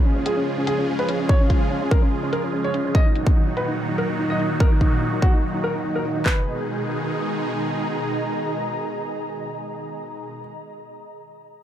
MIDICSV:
0, 0, Header, 1, 5, 480
1, 0, Start_track
1, 0, Tempo, 413793
1, 1500, Time_signature, 4, 2, 24, 8
1, 13493, End_track
2, 0, Start_track
2, 0, Title_t, "Ambient pad"
2, 0, Program_c, 0, 92
2, 0, Note_on_c, 0, 58, 77
2, 0, Note_on_c, 0, 61, 72
2, 0, Note_on_c, 0, 68, 70
2, 0, Note_on_c, 0, 73, 78
2, 0, Note_on_c, 0, 80, 78
2, 543, Note_off_c, 0, 80, 0
2, 646, Note_off_c, 0, 58, 0
2, 889, Note_off_c, 0, 73, 0
2, 1158, Note_on_c, 0, 75, 65
2, 3420, Note_on_c, 0, 63, 70
2, 4108, Note_off_c, 0, 75, 0
2, 4131, Note_on_c, 0, 70, 83
2, 4198, Note_on_c, 0, 77, 78
2, 4727, Note_off_c, 0, 61, 0
2, 4962, Note_off_c, 0, 68, 0
2, 7259, Note_off_c, 0, 70, 0
2, 7259, Note_off_c, 0, 77, 0
2, 7260, Note_off_c, 0, 63, 0
2, 7260, Note_on_c, 0, 68, 72
2, 7337, Note_on_c, 0, 75, 68
2, 7411, Note_on_c, 0, 82, 73
2, 11981, Note_off_c, 0, 68, 0
2, 11981, Note_off_c, 0, 75, 0
2, 11981, Note_off_c, 0, 82, 0
2, 13493, End_track
3, 0, Start_track
3, 0, Title_t, "Grand piano"
3, 0, Program_c, 1, 0
3, 59, Note_on_c, 1, 61, 59
3, 170, Note_off_c, 1, 61, 0
3, 187, Note_on_c, 1, 61, 55
3, 286, Note_off_c, 1, 61, 0
3, 299, Note_on_c, 1, 68, 86
3, 413, Note_off_c, 1, 68, 0
3, 428, Note_on_c, 1, 61, 56
3, 527, Note_off_c, 1, 61, 0
3, 667, Note_on_c, 1, 61, 58
3, 766, Note_off_c, 1, 61, 0
3, 779, Note_on_c, 1, 68, 88
3, 893, Note_off_c, 1, 68, 0
3, 907, Note_on_c, 1, 61, 56
3, 1002, Note_off_c, 1, 61, 0
3, 1019, Note_on_c, 1, 61, 57
3, 1133, Note_off_c, 1, 61, 0
3, 1147, Note_on_c, 1, 71, 86
3, 1246, Note_off_c, 1, 71, 0
3, 1259, Note_on_c, 1, 61, 60
3, 1370, Note_off_c, 1, 61, 0
3, 1387, Note_on_c, 1, 61, 57
3, 1486, Note_off_c, 1, 61, 0
3, 1499, Note_on_c, 1, 73, 90
3, 1613, Note_off_c, 1, 73, 0
3, 1627, Note_on_c, 1, 61, 58
3, 1721, Note_off_c, 1, 61, 0
3, 1738, Note_on_c, 1, 61, 57
3, 1852, Note_off_c, 1, 61, 0
3, 1979, Note_on_c, 1, 61, 58
3, 2089, Note_off_c, 1, 61, 0
3, 2106, Note_on_c, 1, 61, 59
3, 2206, Note_off_c, 1, 61, 0
3, 2218, Note_on_c, 1, 70, 84
3, 2332, Note_off_c, 1, 70, 0
3, 2347, Note_on_c, 1, 61, 57
3, 2446, Note_off_c, 1, 61, 0
3, 2587, Note_on_c, 1, 61, 57
3, 2686, Note_off_c, 1, 61, 0
3, 2698, Note_on_c, 1, 70, 85
3, 2812, Note_off_c, 1, 70, 0
3, 2827, Note_on_c, 1, 61, 56
3, 2921, Note_off_c, 1, 61, 0
3, 2939, Note_on_c, 1, 61, 58
3, 3053, Note_off_c, 1, 61, 0
3, 3067, Note_on_c, 1, 73, 88
3, 3166, Note_off_c, 1, 73, 0
3, 3179, Note_on_c, 1, 61, 60
3, 3290, Note_off_c, 1, 61, 0
3, 3307, Note_on_c, 1, 61, 60
3, 3406, Note_off_c, 1, 61, 0
3, 3419, Note_on_c, 1, 75, 89
3, 3533, Note_off_c, 1, 75, 0
3, 3548, Note_on_c, 1, 63, 57
3, 3642, Note_off_c, 1, 63, 0
3, 3659, Note_on_c, 1, 63, 59
3, 3773, Note_off_c, 1, 63, 0
3, 3899, Note_on_c, 1, 63, 57
3, 4011, Note_off_c, 1, 63, 0
3, 4028, Note_on_c, 1, 63, 55
3, 4127, Note_off_c, 1, 63, 0
3, 4139, Note_on_c, 1, 71, 81
3, 4253, Note_off_c, 1, 71, 0
3, 4268, Note_on_c, 1, 63, 57
3, 4366, Note_off_c, 1, 63, 0
3, 4507, Note_on_c, 1, 63, 59
3, 4606, Note_off_c, 1, 63, 0
3, 4619, Note_on_c, 1, 70, 83
3, 4733, Note_off_c, 1, 70, 0
3, 4747, Note_on_c, 1, 63, 57
3, 4842, Note_off_c, 1, 63, 0
3, 4860, Note_on_c, 1, 63, 60
3, 4973, Note_off_c, 1, 63, 0
3, 4987, Note_on_c, 1, 75, 84
3, 5086, Note_off_c, 1, 75, 0
3, 5098, Note_on_c, 1, 63, 56
3, 5210, Note_off_c, 1, 63, 0
3, 5227, Note_on_c, 1, 63, 58
3, 5326, Note_off_c, 1, 63, 0
3, 5339, Note_on_c, 1, 70, 89
3, 5453, Note_off_c, 1, 70, 0
3, 5467, Note_on_c, 1, 63, 59
3, 5561, Note_off_c, 1, 63, 0
3, 5579, Note_on_c, 1, 63, 56
3, 5693, Note_off_c, 1, 63, 0
3, 5818, Note_on_c, 1, 63, 57
3, 5930, Note_off_c, 1, 63, 0
3, 5947, Note_on_c, 1, 63, 57
3, 6046, Note_off_c, 1, 63, 0
3, 6059, Note_on_c, 1, 66, 85
3, 6173, Note_off_c, 1, 66, 0
3, 6187, Note_on_c, 1, 63, 56
3, 6286, Note_off_c, 1, 63, 0
3, 6428, Note_on_c, 1, 63, 56
3, 6527, Note_off_c, 1, 63, 0
3, 6540, Note_on_c, 1, 70, 84
3, 6653, Note_off_c, 1, 70, 0
3, 6667, Note_on_c, 1, 63, 54
3, 6761, Note_off_c, 1, 63, 0
3, 6778, Note_on_c, 1, 63, 60
3, 6892, Note_off_c, 1, 63, 0
3, 6907, Note_on_c, 1, 70, 85
3, 7006, Note_off_c, 1, 70, 0
3, 7019, Note_on_c, 1, 63, 55
3, 7130, Note_off_c, 1, 63, 0
3, 7147, Note_on_c, 1, 63, 57
3, 7246, Note_off_c, 1, 63, 0
3, 7258, Note_on_c, 1, 71, 78
3, 12045, Note_off_c, 1, 71, 0
3, 13493, End_track
4, 0, Start_track
4, 0, Title_t, "Supersaw synth"
4, 0, Program_c, 2, 81
4, 0, Note_on_c, 2, 49, 76
4, 0, Note_on_c, 2, 53, 67
4, 0, Note_on_c, 2, 56, 67
4, 0, Note_on_c, 2, 65, 70
4, 0, Note_on_c, 2, 68, 79
4, 3373, Note_off_c, 2, 49, 0
4, 3381, Note_off_c, 2, 53, 0
4, 3381, Note_off_c, 2, 56, 0
4, 3381, Note_off_c, 2, 65, 0
4, 3381, Note_off_c, 2, 68, 0
4, 3419, Note_on_c, 2, 51, 68
4, 3420, Note_on_c, 2, 46, 73
4, 3420, Note_on_c, 2, 54, 67
4, 3420, Note_on_c, 2, 63, 66
4, 3420, Note_on_c, 2, 66, 81
4, 7221, Note_off_c, 2, 46, 0
4, 7221, Note_off_c, 2, 51, 0
4, 7221, Note_off_c, 2, 54, 0
4, 7221, Note_off_c, 2, 63, 0
4, 7221, Note_off_c, 2, 66, 0
4, 7259, Note_on_c, 2, 56, 66
4, 7259, Note_on_c, 2, 63, 68
4, 7259, Note_on_c, 2, 68, 82
4, 7260, Note_on_c, 2, 47, 74
4, 7260, Note_on_c, 2, 51, 69
4, 11981, Note_off_c, 2, 47, 0
4, 11981, Note_off_c, 2, 51, 0
4, 11981, Note_off_c, 2, 56, 0
4, 11981, Note_off_c, 2, 63, 0
4, 11981, Note_off_c, 2, 68, 0
4, 13493, End_track
5, 0, Start_track
5, 0, Title_t, "Drums"
5, 299, Note_on_c, 9, 42, 69
5, 415, Note_off_c, 9, 42, 0
5, 779, Note_on_c, 9, 42, 66
5, 895, Note_off_c, 9, 42, 0
5, 1147, Note_on_c, 9, 42, 33
5, 1259, Note_off_c, 9, 42, 0
5, 1259, Note_on_c, 9, 42, 73
5, 1375, Note_off_c, 9, 42, 0
5, 1500, Note_on_c, 9, 36, 104
5, 1616, Note_off_c, 9, 36, 0
5, 1739, Note_on_c, 9, 42, 68
5, 1740, Note_on_c, 9, 36, 53
5, 1855, Note_off_c, 9, 42, 0
5, 1856, Note_off_c, 9, 36, 0
5, 2220, Note_on_c, 9, 36, 94
5, 2220, Note_on_c, 9, 42, 67
5, 2336, Note_off_c, 9, 36, 0
5, 2336, Note_off_c, 9, 42, 0
5, 2700, Note_on_c, 9, 42, 68
5, 2816, Note_off_c, 9, 42, 0
5, 3068, Note_on_c, 9, 42, 31
5, 3179, Note_off_c, 9, 42, 0
5, 3179, Note_on_c, 9, 42, 71
5, 3295, Note_off_c, 9, 42, 0
5, 3420, Note_on_c, 9, 36, 102
5, 3536, Note_off_c, 9, 36, 0
5, 3659, Note_on_c, 9, 42, 71
5, 3775, Note_off_c, 9, 42, 0
5, 3788, Note_on_c, 9, 36, 93
5, 3904, Note_off_c, 9, 36, 0
5, 4139, Note_on_c, 9, 42, 71
5, 4255, Note_off_c, 9, 42, 0
5, 4619, Note_on_c, 9, 42, 69
5, 4735, Note_off_c, 9, 42, 0
5, 4987, Note_on_c, 9, 42, 33
5, 5099, Note_off_c, 9, 42, 0
5, 5099, Note_on_c, 9, 42, 71
5, 5215, Note_off_c, 9, 42, 0
5, 5339, Note_on_c, 9, 36, 104
5, 5455, Note_off_c, 9, 36, 0
5, 5579, Note_on_c, 9, 36, 53
5, 5579, Note_on_c, 9, 42, 69
5, 5695, Note_off_c, 9, 36, 0
5, 5695, Note_off_c, 9, 42, 0
5, 6059, Note_on_c, 9, 36, 93
5, 6059, Note_on_c, 9, 42, 75
5, 6175, Note_off_c, 9, 36, 0
5, 6175, Note_off_c, 9, 42, 0
5, 6539, Note_on_c, 9, 42, 73
5, 6655, Note_off_c, 9, 42, 0
5, 6908, Note_on_c, 9, 42, 35
5, 7019, Note_off_c, 9, 42, 0
5, 7019, Note_on_c, 9, 42, 73
5, 7135, Note_off_c, 9, 42, 0
5, 7259, Note_on_c, 9, 36, 96
5, 7259, Note_on_c, 9, 39, 81
5, 7375, Note_off_c, 9, 36, 0
5, 7375, Note_off_c, 9, 39, 0
5, 13493, End_track
0, 0, End_of_file